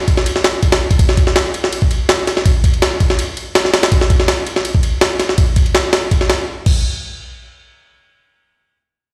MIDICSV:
0, 0, Header, 1, 2, 480
1, 0, Start_track
1, 0, Tempo, 365854
1, 1302, Time_signature, 4, 2, 24, 8
1, 11982, End_track
2, 0, Start_track
2, 0, Title_t, "Drums"
2, 101, Note_on_c, 9, 36, 93
2, 102, Note_on_c, 9, 51, 69
2, 228, Note_on_c, 9, 38, 57
2, 232, Note_off_c, 9, 36, 0
2, 233, Note_off_c, 9, 51, 0
2, 343, Note_on_c, 9, 51, 91
2, 359, Note_off_c, 9, 38, 0
2, 469, Note_on_c, 9, 38, 53
2, 474, Note_off_c, 9, 51, 0
2, 581, Note_off_c, 9, 38, 0
2, 581, Note_on_c, 9, 38, 103
2, 581, Note_on_c, 9, 51, 79
2, 713, Note_off_c, 9, 38, 0
2, 713, Note_off_c, 9, 51, 0
2, 821, Note_on_c, 9, 36, 88
2, 821, Note_on_c, 9, 51, 62
2, 949, Note_off_c, 9, 51, 0
2, 949, Note_on_c, 9, 38, 103
2, 949, Note_on_c, 9, 51, 79
2, 952, Note_off_c, 9, 36, 0
2, 1080, Note_off_c, 9, 38, 0
2, 1080, Note_off_c, 9, 51, 0
2, 1188, Note_on_c, 9, 36, 87
2, 1189, Note_on_c, 9, 51, 62
2, 1302, Note_off_c, 9, 36, 0
2, 1302, Note_off_c, 9, 51, 0
2, 1302, Note_on_c, 9, 36, 112
2, 1302, Note_on_c, 9, 51, 87
2, 1429, Note_on_c, 9, 38, 54
2, 1433, Note_off_c, 9, 36, 0
2, 1433, Note_off_c, 9, 51, 0
2, 1539, Note_on_c, 9, 51, 66
2, 1541, Note_on_c, 9, 36, 94
2, 1560, Note_off_c, 9, 38, 0
2, 1667, Note_on_c, 9, 38, 52
2, 1671, Note_off_c, 9, 51, 0
2, 1672, Note_off_c, 9, 36, 0
2, 1781, Note_off_c, 9, 38, 0
2, 1781, Note_on_c, 9, 38, 114
2, 1781, Note_on_c, 9, 51, 88
2, 1912, Note_off_c, 9, 38, 0
2, 1912, Note_off_c, 9, 51, 0
2, 2022, Note_on_c, 9, 51, 67
2, 2151, Note_on_c, 9, 38, 57
2, 2154, Note_off_c, 9, 51, 0
2, 2264, Note_on_c, 9, 51, 91
2, 2282, Note_off_c, 9, 38, 0
2, 2388, Note_on_c, 9, 36, 95
2, 2395, Note_off_c, 9, 51, 0
2, 2502, Note_on_c, 9, 51, 67
2, 2519, Note_off_c, 9, 36, 0
2, 2633, Note_off_c, 9, 51, 0
2, 2741, Note_on_c, 9, 38, 120
2, 2741, Note_on_c, 9, 51, 87
2, 2873, Note_off_c, 9, 38, 0
2, 2873, Note_off_c, 9, 51, 0
2, 2984, Note_on_c, 9, 38, 46
2, 2984, Note_on_c, 9, 51, 69
2, 3109, Note_off_c, 9, 38, 0
2, 3109, Note_on_c, 9, 38, 50
2, 3115, Note_off_c, 9, 51, 0
2, 3222, Note_on_c, 9, 36, 110
2, 3222, Note_on_c, 9, 51, 89
2, 3240, Note_off_c, 9, 38, 0
2, 3353, Note_off_c, 9, 36, 0
2, 3353, Note_off_c, 9, 51, 0
2, 3462, Note_on_c, 9, 36, 93
2, 3464, Note_on_c, 9, 51, 69
2, 3591, Note_off_c, 9, 51, 0
2, 3591, Note_on_c, 9, 51, 44
2, 3593, Note_off_c, 9, 36, 0
2, 3702, Note_off_c, 9, 51, 0
2, 3702, Note_on_c, 9, 38, 114
2, 3702, Note_on_c, 9, 51, 86
2, 3834, Note_off_c, 9, 38, 0
2, 3834, Note_off_c, 9, 51, 0
2, 3941, Note_on_c, 9, 36, 92
2, 3942, Note_on_c, 9, 51, 67
2, 4069, Note_on_c, 9, 38, 57
2, 4072, Note_off_c, 9, 36, 0
2, 4073, Note_off_c, 9, 51, 0
2, 4183, Note_on_c, 9, 51, 90
2, 4200, Note_off_c, 9, 38, 0
2, 4314, Note_off_c, 9, 51, 0
2, 4421, Note_on_c, 9, 51, 67
2, 4552, Note_off_c, 9, 51, 0
2, 4661, Note_on_c, 9, 38, 117
2, 4661, Note_on_c, 9, 51, 89
2, 4789, Note_off_c, 9, 38, 0
2, 4789, Note_on_c, 9, 38, 41
2, 4793, Note_off_c, 9, 51, 0
2, 4901, Note_off_c, 9, 38, 0
2, 4901, Note_on_c, 9, 38, 106
2, 4901, Note_on_c, 9, 51, 82
2, 5027, Note_off_c, 9, 38, 0
2, 5027, Note_off_c, 9, 51, 0
2, 5027, Note_on_c, 9, 38, 104
2, 5027, Note_on_c, 9, 51, 83
2, 5140, Note_off_c, 9, 51, 0
2, 5140, Note_on_c, 9, 36, 110
2, 5140, Note_on_c, 9, 51, 87
2, 5158, Note_off_c, 9, 38, 0
2, 5266, Note_on_c, 9, 38, 56
2, 5271, Note_off_c, 9, 36, 0
2, 5271, Note_off_c, 9, 51, 0
2, 5380, Note_on_c, 9, 36, 96
2, 5381, Note_on_c, 9, 51, 68
2, 5397, Note_off_c, 9, 38, 0
2, 5506, Note_on_c, 9, 38, 53
2, 5511, Note_off_c, 9, 36, 0
2, 5512, Note_off_c, 9, 51, 0
2, 5618, Note_off_c, 9, 38, 0
2, 5618, Note_on_c, 9, 38, 116
2, 5618, Note_on_c, 9, 51, 88
2, 5749, Note_off_c, 9, 38, 0
2, 5749, Note_off_c, 9, 51, 0
2, 5859, Note_on_c, 9, 51, 67
2, 5986, Note_on_c, 9, 38, 57
2, 5990, Note_off_c, 9, 51, 0
2, 6099, Note_on_c, 9, 51, 89
2, 6118, Note_off_c, 9, 38, 0
2, 6226, Note_on_c, 9, 36, 93
2, 6231, Note_off_c, 9, 51, 0
2, 6338, Note_on_c, 9, 51, 69
2, 6357, Note_off_c, 9, 36, 0
2, 6469, Note_off_c, 9, 51, 0
2, 6578, Note_on_c, 9, 38, 120
2, 6578, Note_on_c, 9, 51, 90
2, 6709, Note_off_c, 9, 38, 0
2, 6709, Note_off_c, 9, 51, 0
2, 6816, Note_on_c, 9, 38, 47
2, 6816, Note_on_c, 9, 51, 70
2, 6944, Note_off_c, 9, 38, 0
2, 6944, Note_on_c, 9, 38, 49
2, 6948, Note_off_c, 9, 51, 0
2, 7057, Note_on_c, 9, 51, 88
2, 7059, Note_on_c, 9, 36, 111
2, 7075, Note_off_c, 9, 38, 0
2, 7188, Note_off_c, 9, 51, 0
2, 7190, Note_off_c, 9, 36, 0
2, 7297, Note_on_c, 9, 51, 67
2, 7299, Note_on_c, 9, 36, 96
2, 7425, Note_off_c, 9, 51, 0
2, 7425, Note_on_c, 9, 51, 45
2, 7431, Note_off_c, 9, 36, 0
2, 7539, Note_off_c, 9, 51, 0
2, 7539, Note_on_c, 9, 38, 118
2, 7539, Note_on_c, 9, 51, 88
2, 7670, Note_off_c, 9, 38, 0
2, 7670, Note_off_c, 9, 51, 0
2, 7778, Note_on_c, 9, 38, 101
2, 7778, Note_on_c, 9, 51, 80
2, 7910, Note_off_c, 9, 38, 0
2, 7910, Note_off_c, 9, 51, 0
2, 8021, Note_on_c, 9, 36, 89
2, 8021, Note_on_c, 9, 51, 64
2, 8147, Note_on_c, 9, 38, 47
2, 8152, Note_off_c, 9, 36, 0
2, 8152, Note_off_c, 9, 51, 0
2, 8260, Note_off_c, 9, 38, 0
2, 8260, Note_on_c, 9, 38, 102
2, 8260, Note_on_c, 9, 51, 79
2, 8391, Note_off_c, 9, 38, 0
2, 8391, Note_off_c, 9, 51, 0
2, 8740, Note_on_c, 9, 49, 87
2, 8741, Note_on_c, 9, 36, 115
2, 8871, Note_off_c, 9, 49, 0
2, 8872, Note_off_c, 9, 36, 0
2, 11982, End_track
0, 0, End_of_file